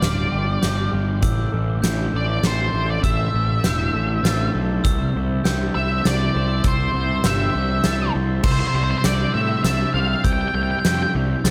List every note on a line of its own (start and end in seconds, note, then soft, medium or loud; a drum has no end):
0.00 0.26 D1 medium
0.00 0.93 G2 medium
0.00 1.23 D3 medium
0.00 0.61 G3 medium
0.00 1.23 D4 medium
0.00 0.32 G4 medium
0.00 0.90 D5 medium
0.00 0.62 F6 medium
0.00 snare medium
0.00 closed hi-hat soft
0.32 0.57 G1 medium
0.32 0.91 G4 medium
0.61 0.87 G1 medium
0.61 1.25 G3 medium
0.61 1.23 G6 medium
0.61 snare medium
0.61 closed hi-hat soft
0.92 1.23 G1 medium
0.92 1.25 G4 medium
1.22 1.47 A1 medium
1.22 2.73 A2 medium
1.22 1.83 E6 medium
1.22 kick medium
1.22 closed hi-hat medium
1.52 1.77 A1 medium
1.52 3.03 A3 medium
1.82 2.07 A1 medium
1.82 3.63 E4 medium
1.82 2.43 G6 medium
1.82 snare medium
1.82 closed hi-hat medium
2.13 2.38 A1 medium
2.13 2.71 A4 medium
2.13 2.46 D5 medium
2.43 2.67 A1 medium
2.43 4.23 C4 medium
2.43 2.91 C5 medium
2.43 3.03 A6 medium
2.43 snare medium
2.43 closed hi-hat soft
2.73 2.98 A1 medium
2.73 3.92 A4 medium
2.90 3.03 D5 medium
3.02 3.27 A1 medium
3.02 4.54 A2 medium
3.02 4.50 E5 medium
3.02 3.64 E6 medium
3.02 kick medium
3.02 closed hi-hat soft
3.33 3.58 A1 medium
3.33 4.84 A3 medium
3.64 3.88 E1 medium
3.64 5.44 E4 medium
3.64 4.24 G6 medium
3.64 snare medium
3.64 closed hi-hat soft
3.93 4.18 A1 medium
3.93 4.52 A4 medium
4.23 4.47 A1 medium
4.23 5.14 C4 medium
4.23 4.84 A6 medium
4.23 snare medium
4.23 closed hi-hat soft
4.53 4.79 B1 medium
4.53 4.84 A4 medium
4.83 5.09 C2 medium
4.83 6.63 C3 medium
4.83 5.44 E6 medium
4.83 kick medium
4.83 closed hi-hat soft
5.14 5.39 C2 medium
5.14 6.94 C4 medium
5.44 5.69 C2 medium
5.44 6.94 G4 medium
5.44 6.05 G6 medium
5.44 snare medium
5.44 closed hi-hat medium
5.75 5.99 C2 medium
5.75 6.33 C5 medium
5.75 6.06 E5 medium
6.04 6.29 C2 medium
6.04 7.54 E4 medium
6.04 6.68 D5 medium
6.04 6.64 A6 medium
6.04 snare medium
6.04 closed hi-hat soft
6.34 6.59 C2 medium
6.34 7.52 C5 medium
6.64 6.88 C2 medium
6.64 8.14 C3 medium
6.64 7.28 C5 medium
6.64 7.24 E6 medium
6.64 kick medium
6.64 closed hi-hat medium
6.94 7.18 C2 medium
6.94 8.44 C4 medium
7.24 7.48 G1 medium
7.24 8.45 G4 medium
7.24 8.12 E5 medium
7.24 7.85 G6 medium
7.24 snare medium
7.24 closed hi-hat medium
7.53 7.79 C2 medium
7.53 8.12 C5 medium
7.84 8.09 C2 medium
7.84 8.44 E4 medium
7.84 8.45 A6 medium
7.84 snare medium
7.84 closed hi-hat medium
8.14 8.39 C2 medium
8.14 8.44 C5 medium
8.43 8.64 C2 medium
8.43 9.95 C3 medium
8.43 8.51 C5 medium
8.43 9.04 E6 medium
8.43 kick medium
8.43 crash medium
8.52 8.59 C5 soft
8.60 8.67 C5 soft
8.67 8.75 C5 soft
8.74 8.94 C2 medium
8.74 10.24 G3 medium
8.74 8.83 C5 medium
8.84 8.90 C5 soft
8.91 8.98 C5 medium
8.98 9.06 C5 soft
9.04 9.24 C2 medium
9.04 10.84 C4 medium
9.04 9.33 D5 medium
9.04 9.65 G6 medium
9.04 snare medium
9.04 closed hi-hat medium
9.34 9.54 A2 medium
9.34 9.63 E5 medium
9.64 9.84 C2 medium
9.64 11.44 C5 medium
9.64 9.94 E5 medium
9.64 10.25 A6 medium
9.64 snare medium
9.64 closed hi-hat medium
9.94 10.14 C2 medium
9.94 11.45 G4 medium
9.94 10.22 F5 medium
10.23 10.44 C2 medium
10.23 11.51 C3 medium
10.23 10.32 G5 medium
10.23 10.84 E6 medium
10.23 kick medium
10.23 closed hi-hat medium
10.33 10.40 G5 medium
10.41 10.48 G5 medium
10.48 10.54 G5 medium
10.54 10.74 C2 medium
10.54 11.51 G3 medium
10.54 10.62 G5 medium
10.63 10.71 G5 medium
10.71 10.79 G5 medium
10.79 10.86 G5 medium
10.84 11.05 F2 medium
10.84 11.51 C4 medium
10.84 10.94 G5 medium
10.84 11.45 G6 medium
10.84 snare medium
10.84 closed hi-hat medium
10.95 11.02 G5 medium
11.03 11.11 G5 medium
11.14 11.34 C2 medium
11.14 11.51 E4 medium
11.44 11.51 C#2 medium
11.44 11.51 C5 medium
11.44 11.51 A6 medium
11.44 snare medium
11.44 closed hi-hat medium